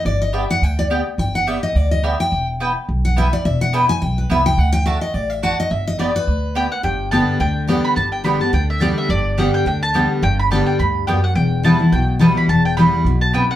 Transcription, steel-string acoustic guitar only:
0.06 D5
0.22 D#5
0.34 E5
0.50 F#5
0.63 G5
0.79 D5
1.19 G5
1.35 F#5
1.47 E5
1.63 D#5
1.76 D5
1.91 D#5
2.05 E5
2.20 G5
3.05 F#5
3.18 E5
3.33 D5
3.45 E5
3.61 F#5
3.73 G5
3.89 G#5
4.02 G5
4.18 B4
4.31 E5
4.46 G5
4.58 F#5
4.73 G5
4.86 E5
5.01 D#5
5.14 D5
5.30 E5
5.43 F#5
5.60 D#5
5.72 E5
5.87 D#5
5.99 D5
6.16 B4
6.83 G2
7.12 D3 G3 B3 G4
7.40 D3
7.67 D3 G3 B3 G4
7.97 G2
8.24 D3 G3 B3 G4
8.40 B3 G4
8.53 D3
8.80 D3 G3 B3 G4
9.10 G2
9.38 D3 G3 B3 G4
9.66 D3
9.94 D3 G3 B3 G4
10.23 G2
10.52 D3 G3 B3 G4
10.80 G2
11.08 F#2
11.35 E2
11.63 E3 G3 B3 E4
11.80 B3 E4
11.93 B2
12.19 E3 G3 B3 E4
12.49 E2
12.77 E3 G3 B3 E4
13.06 B2
13.34 C3

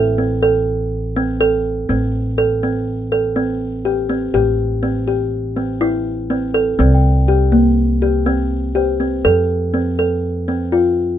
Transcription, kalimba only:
0.18 C4
0.43 A4
1.16 C4
1.41 A4
1.89 C4
2.38 A4
2.63 C4
3.12 A4
3.36 C4
3.85 G4
4.09 C4
4.34 G4
4.83 C4
5.08 G4
5.57 C4
5.81 E4
6.30 C4
6.54 A4
6.79 C4
7.28 G4
7.52 A#3
8.02 G4
8.26 C4
8.75 G4
9.00 C4
9.25 A4
9.74 C4
9.99 A4
10.48 C4
10.72 F4

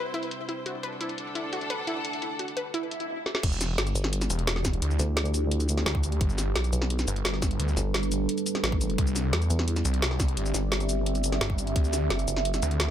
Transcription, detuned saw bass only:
3.43 E1
3.78 G1
4.30 E1
4.82 D2
5.86 D2
6.21 G1
6.56 B1
7.08 G1
7.60 D2
8.98 C2
9.33 E2
9.85 C2
10.37 G1
11.41 G1
11.76 D2
12.10 F#1
12.62 D2

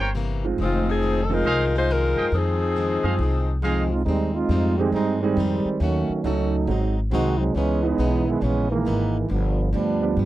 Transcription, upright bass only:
Already playing: G1
0.58 F1
1.44 C2
2.16 F#2
2.32 F2
3.03 F#2
3.19 C2
4.06 D#2
4.49 F2
4.92 G2
5.37 F2
5.65 muted upright bass stroke
5.80 D#2
6.09 muted upright bass stroke
6.24 C#2
6.67 G#1
7.11 C2
7.55 C#2
7.98 B1
8.42 A#1
8.86 G#1
9.30 G1
9.73 D2
10.17 G2

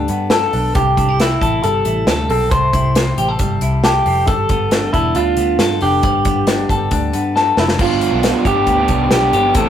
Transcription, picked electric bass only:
0.09 G2
0.53 B1
0.75 C2
0.97 C2
1.41 A1
1.64 G1
1.86 A1
2.07 D2
2.29 B1
2.52 C2
2.73 C2
3.18 A1
3.40 G1
3.62 C2
4.06 F1
4.28 G1
4.50 G1
4.94 E1
5.15 D2
5.37 D2
5.59 G2
5.82 F1
6.03 G1
6.26 G1
6.70 G1
6.92 D2
7.14 G2
7.57 F1
7.79 G1
8.12 B1
8.45 G1
8.67 D2
8.89 C2
9.11 B1
9.33 G1
9.55 A1

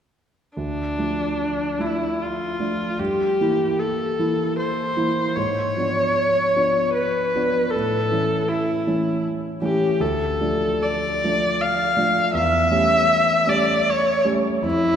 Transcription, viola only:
0.57 D4
1.81 E4
2.22 F4
2.99 G4
3.79 A4
4.59 C5
5.36 C#5
6.94 B4
7.71 A4
8.48 E4
9.62 G4
10.01 A4
10.83 D5
11.61 F5
12.34 E5
13.49 D5
13.90 C#5
14.65 E4

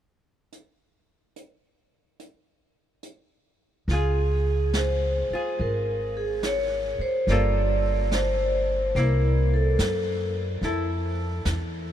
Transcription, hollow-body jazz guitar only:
3.91 F4 G#4
5.33 F4 G#4
7.30 G3 A#3 F4 A4
8.96 A#3 E4
10.64 E4 A4

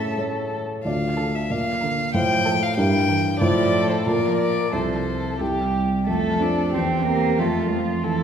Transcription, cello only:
Already playing: C#3
1.18 D3
1.83 D3
2.46 F3
3.08 E3
3.41 F3
4.06 F3
4.73 F3
5.40 G3
6.07 A3
6.40 D4
6.74 C4
7.06 A#3
7.39 A3
7.71 F3
8.03 E3

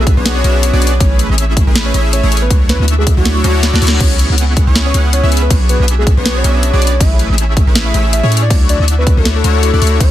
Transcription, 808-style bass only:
Already playing: B1
0.17 B1
0.44 B1
0.73 B1
1.00 A1
1.30 A1
1.67 A1
1.94 A1
2.23 A1
2.51 D2
2.80 D2
3.17 D2
3.44 D2
3.73 D2
3.82 D2
4.00 C#2
4.30 C#2
4.67 C#2
4.94 C#2
5.23 C#2
5.50 B1
5.80 B1
6.17 B1
6.44 B1
6.73 B1
7.01 A1
7.30 A1
7.67 A1
7.94 A1
8.23 A2
8.50 D2
8.80 D2
9.17 D2
9.44 D2
9.73 D2
9.82 D2
10.00 C#2

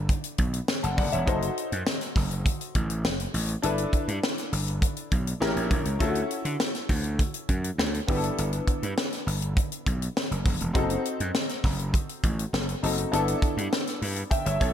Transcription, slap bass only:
Already playing: G1
0.39 B1
0.84 F#1
0.98 F#1
1.14 E1
1.28 F#1
1.72 F#2
2.16 F#1
2.75 A1
3.05 F#1
3.34 A1
3.64 G1
4.08 G2
4.52 G1
5.12 B1
5.41 A1
5.56 A#1
5.71 A#1
5.86 C#2
6.00 D2
6.45 D3
6.89 D2
7.49 F#2
7.78 D2
8.09 G1
8.38 G1
8.83 G2
9.27 G1
9.87 B1
10.31 F#1
10.46 F#1
10.61 E1
10.75 F#1
11.20 F#2
11.64 F#1
12.24 A1
12.53 F#1
12.83 F#1
13.13 G1
13.57 G2
14.02 G2
14.46 G1
14.61 B1

